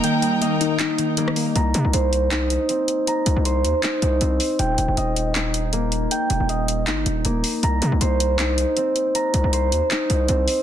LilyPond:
<<
  \new Staff \with { instrumentName = "String section" } { \time 4/4 \key c \minor \tempo 4 = 158 <ees' bes' g'' bes''>1 | r1 | r1 | r1 |
r1 | r1 | r1 | }
  \new Staff \with { instrumentName = "Harp" } { \time 4/4 \key c \minor <bes ees' ees'' g''>4 ees''4 ees'4 bes4 | bes''4 c''4 ees'4 c'4 | bes''4 c''4 ees'4 c'4 | g''4 ees''4 ees'4 bes4 |
g''4 ees''4 ees'4 bes4 | bes''4 c''4 ees'4 c'4 | bes''4 c''4 ees'4 c'4 | }
  \new Staff \with { instrumentName = "Synth pluck" } { \time 4/4 \key c \minor <ees g bes ees''>8 g8 bes8 ees'8 ees''8 ees8 g8 bes8 | r1 | r1 | r1 |
r1 | r1 | r1 | }
  \new Staff \with { instrumentName = "808-style bass" } { \clef bass \time 4/4 \key c \minor r1 | c,8 c16 c,16 c,4.~ c,16 r4 r16 | r8 c,16 c,8. ees,16 r8. c,8 c,8 r8 | ees,,8 ees,,16 ees,,16 ees,,2. |
r8 ees,,16 ees,,4~ ees,,16 g,,8 ees,,8 ees,,8 r8 | c,8 c16 c,16 c,4.~ c,16 r4 r16 | r8 c,16 c,8. ees,16 r8. c,8 c,8 r8 | }
  \new DrumStaff \with { instrumentName = "Drums" } \drummode { \time 4/4 hh8 hh8 hh8 hh8 <hc hh>8 hh8 hh16 ss16 hho8 | hh8 hh8 hh8 hh8 <hc hh>8 hh8 hh8 hh8 | hh8 hh8 hh8 hh8 <hc hh>8 hh8 hh8 hho8 | hh8 hh8 hh8 hh8 <hc hh>8 hh8 hh8 hh8 |
hh8 hh8 hh8 hh8 <hc hh>8 hh8 hh8 hho8 | hh8 hh8 hh8 hh8 <hc hh>8 hh8 hh8 hh8 | hh8 hh8 hh8 hh8 <hc hh>8 hh8 hh8 hho8 | }
>>